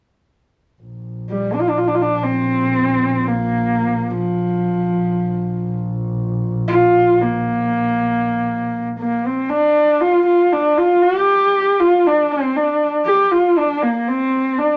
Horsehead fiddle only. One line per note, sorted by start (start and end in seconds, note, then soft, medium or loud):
1.30 1.56 G3 medium
1.54 1.62 D4 medium
1.61 1.71 F4 medium
1.69 1.80 D4 medium
1.78 1.89 F4 medium
1.88 1.96 D4 medium
1.95 2.03 F4 medium
2.02 2.24 D4 medium
2.23 3.29 C4 medium
3.27 4.12 A#3 medium
4.11 5.79 F3 medium
6.68 7.23 F4 medium
7.21 8.88 A#3 medium
8.99 9.28 A#3 medium
9.26 9.51 C4 medium
9.50 10.02 D4 medium
10.01 10.26 F4 medium
10.26 10.54 F4 medium
10.52 10.79 D4 medium
10.78 11.04 F4 medium
11.02 11.81 G4 loud
11.80 12.08 F4 medium
12.06 12.33 D4 medium
12.31 12.58 C4 medium
12.56 12.94 D4 medium
13.06 13.33 G4 medium
13.32 13.59 F4 medium
13.58 13.84 D4 medium
13.82 14.09 A#3 medium
14.08 14.60 C4 medium
14.59 14.77 D4 medium